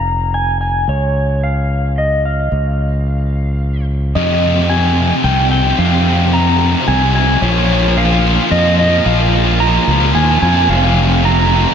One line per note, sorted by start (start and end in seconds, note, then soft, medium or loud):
0.00 0.84 F1 medium
0.00 0.34 A#5 medium
0.34 0.60 G#5 medium
0.61 0.89 G#5 medium
0.88 2.48 C#2 medium
0.88 1.45 C#5 medium
1.43 1.99 F5 medium
1.98 2.26 D#5 medium
2.25 3.85 F5 medium
2.52 4.12 C#2 medium
4.15 5.11 F2 medium
4.15 4.22 F2 medium
4.15 4.24 C3 medium
4.15 4.71 D#5 medium
4.23 4.31 F2 soft
4.23 4.32 C3 soft
4.32 4.38 F2 soft
4.32 4.39 C3 medium
4.38 4.46 F2 soft
4.38 4.47 C3 soft
4.47 4.54 F2 soft
4.47 4.55 C3 medium
4.54 4.61 F2 soft
4.54 4.62 C3 medium
4.61 4.69 F2 medium
4.61 4.69 C3 medium
4.69 4.76 F2 soft
4.69 4.78 C3 medium
4.69 5.24 G#5 medium
4.77 4.84 F2 soft
4.77 4.85 C3 medium
4.85 4.92 F2 soft
4.85 4.92 C3 medium
4.93 5.00 F2 soft
4.93 5.00 C3 medium
5.01 5.07 F2 soft
5.01 5.08 C3 medium
5.07 5.15 F2 medium
5.07 5.16 C3 medium
5.16 5.23 F2 soft
5.16 5.24 C3 medium
5.24 5.72 C2 medium
5.24 5.31 F2 soft
5.24 5.31 C3 medium
5.24 5.50 G5 medium
5.31 5.37 F2 soft
5.31 5.39 C3 medium
5.38 5.46 F2 soft
5.38 5.47 C3 medium
5.47 5.54 F2 soft
5.47 5.55 C3 medium
5.51 5.61 F2 soft
5.51 5.79 G5 medium
5.55 5.62 C3 medium
5.62 5.69 F2 soft
5.62 5.69 C3 medium
5.70 5.78 F2 soft
5.70 5.78 C3 medium
5.78 6.74 F2 medium
5.78 5.86 F2 medium
5.78 5.87 C3 medium
5.78 6.35 F5 medium
5.86 5.93 F2 soft
5.86 5.94 C3 soft
5.94 6.01 F2 medium
5.94 6.02 C3 medium
6.02 6.09 F2 soft
6.02 6.09 C3 medium
6.10 6.17 F2 medium
6.10 6.18 C3 medium
6.17 6.25 F2 medium
6.17 6.26 C3 medium
6.25 6.33 F2 medium
6.25 6.33 C3 medium
6.33 6.41 F2 medium
6.33 6.41 C3 medium
6.33 6.87 A#5 medium
6.41 6.49 F2 medium
6.41 6.48 C3 medium
6.48 6.56 F2 medium
6.48 6.56 C3 medium
6.56 6.64 F2 medium
6.56 6.64 C3 medium
6.64 6.72 F2 soft
6.64 6.71 C3 medium
6.72 6.80 F2 medium
6.72 6.80 C3 medium
6.80 6.88 F2 medium
6.80 6.87 C3 medium
6.87 7.35 C2 medium
6.87 6.94 F2 medium
6.87 6.95 C3 medium
6.87 7.14 G#5 medium
6.95 7.03 F2 medium
6.95 7.03 C3 medium
7.03 7.11 F2 medium
7.03 7.11 C3 medium
7.11 7.19 F2 soft
7.11 7.19 C3 medium
7.11 7.43 G#5 medium
7.20 7.26 F2 medium
7.20 7.27 C3 medium
7.27 7.34 F2 soft
7.27 7.34 C3 soft
7.34 7.42 F2 soft
7.34 7.41 C3 medium
7.42 8.37 A#1 medium
7.42 7.49 A#2 medium
7.42 7.50 F3 medium
7.42 7.98 C#5 medium
7.50 7.57 A#2 soft
7.50 7.58 F3 medium
7.57 7.65 A#2 medium
7.57 7.65 F3 medium
7.65 7.72 A#2 soft
7.65 7.72 F3 medium
7.72 7.80 A#2 medium
7.72 7.80 F3 medium
7.80 7.87 A#2 soft
7.80 7.88 F3 medium
7.87 7.95 A#2 medium
7.87 7.97 F3 medium
7.97 8.04 A#2 soft
7.97 8.04 F3 medium
7.97 8.48 F5 medium
8.04 8.11 A#2 medium
8.04 8.12 F3 medium
8.12 8.19 A#2 medium
8.12 8.20 F3 medium
8.19 8.26 A#2 medium
8.19 8.27 F3 medium
8.26 8.33 A#2 medium
8.26 8.35 F3 medium
8.34 8.42 A#2 medium
8.34 8.42 F3 medium
8.43 8.49 A#2 soft
8.43 8.50 F3 medium
8.50 8.99 F2 medium
8.50 8.57 A#2 medium
8.50 8.58 F3 medium
8.50 8.77 D#5 medium
8.58 8.65 A#2 medium
8.58 8.66 F3 medium
8.66 8.73 A#2 medium
8.66 8.74 F3 medium
8.73 8.81 A#2 soft
8.73 8.81 F3 medium
8.79 8.88 A#2 soft
8.79 8.89 F3 medium
8.79 9.07 D#5 medium
8.88 8.96 A#2 soft
8.88 8.97 F3 medium
8.96 9.04 A#2 soft
8.96 9.06 F3 medium
9.05 9.77 A#1 medium
9.05 9.13 A#2 medium
9.05 9.14 F3 medium
9.05 9.62 F5 medium
9.13 9.19 A#2 soft
9.13 9.22 F3 medium
9.20 9.27 A#2 soft
9.20 9.29 F3 medium
9.28 9.36 A#2 soft
9.28 9.36 F3 soft
9.37 9.44 A#2 medium
9.37 9.44 F3 medium
9.44 9.51 A#2 soft
9.44 9.53 F3 medium
9.52 9.59 A#2 medium
9.52 9.60 F3 medium
9.60 9.67 A#2 soft
9.60 9.68 F3 medium
9.60 10.14 A#5 medium
9.67 9.75 A#2 medium
9.67 9.75 F3 medium
9.75 9.82 A#2 soft
9.75 9.83 F3 medium
9.83 9.91 A#2 medium
9.83 9.91 F3 medium
9.87 10.12 C#2 medium
9.91 9.98 A#2 soft
9.91 10.00 F3 medium
9.98 10.06 A#2 medium
9.98 10.06 F3 medium
10.06 10.14 A#2 soft
10.06 10.14 F3 medium
10.14 10.39 D#2 medium
10.14 10.22 A#2 medium
10.14 10.23 F3 medium
10.14 10.41 G#5 medium
10.22 10.30 A#2 soft
10.22 10.31 F3 medium
10.30 10.38 A#2 medium
10.30 10.38 F3 medium
10.38 10.45 A#2 soft
10.38 10.45 F3 medium
10.42 10.66 F2 medium
10.42 10.53 A#2 soft
10.42 10.54 F3 medium
10.42 10.68 G#5 medium
10.53 10.60 A#2 soft
10.53 10.61 F3 soft
10.61 10.68 A#2 soft
10.61 10.69 F3 medium
10.69 11.64 F1 medium
10.69 10.76 F2 medium
10.69 10.77 C3 medium
10.69 11.26 F5 medium
10.76 10.84 F2 soft
10.76 10.85 C3 medium
10.85 10.92 F2 medium
10.85 10.93 C3 medium
10.92 10.99 F2 soft
10.92 11.01 C3 medium
10.99 11.07 F2 medium
10.99 11.08 C3 medium
11.07 11.14 F2 soft
11.07 11.15 C3 medium
11.15 11.22 F2 medium
11.15 11.23 C3 medium
11.23 11.30 F2 soft
11.23 11.31 C3 medium
11.23 11.74 A#5 medium
11.31 11.38 F2 medium
11.31 11.39 C3 medium
11.39 11.46 F2 medium
11.39 11.47 C3 medium
11.46 11.54 F2 medium
11.46 11.55 C3 medium
11.54 11.62 F2 soft
11.54 11.62 C3 medium
11.62 11.69 F2 medium
11.62 11.69 C3 medium
11.69 11.74 F2 medium
11.69 11.74 C3 medium